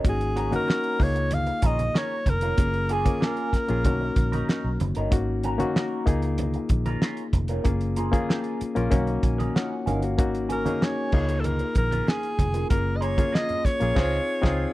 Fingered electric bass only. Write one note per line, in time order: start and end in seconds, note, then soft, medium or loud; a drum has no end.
0.05 0.54 G#1 loud
1.00 1.50 C#2 loud
1.63 1.88 A#1 medium
2.26 2.51 F1 medium
2.58 3.08 F#1 loud
3.53 muted fingered electric bass stroke medium
3.70 3.85 A#1 medium
3.85 4.10 B1 loud
4.16 4.41 A#1 medium
4.64 4.77 B1 medium
4.81 4.93 F#1 medium
4.97 5.09 G1 medium
5.12 5.62 G#1 loud
6.07 6.57 C#2 loud
6.70 6.95 A#1 medium
7.33 7.58 F1 medium
7.65 8.15 F#1 medium
8.61 muted fingered electric bass stroke soft
8.77 8.89 A#1 medium
8.92 9.17 B1 loud
9.23 9.48 A#1 medium
9.87 10.19 G1 medium
10.19 10.68 G#1 medium
11.13 11.62 C#2 loud
11.76 12.01 A#1 loud
12.39 12.64 F1 medium
12.71 13.20 F#1 loud
13.65 muted fingered electric bass stroke soft
13.81 13.96 A#1 medium
13.97 14.18 C#2 medium
14.44 14.65 C#2 loud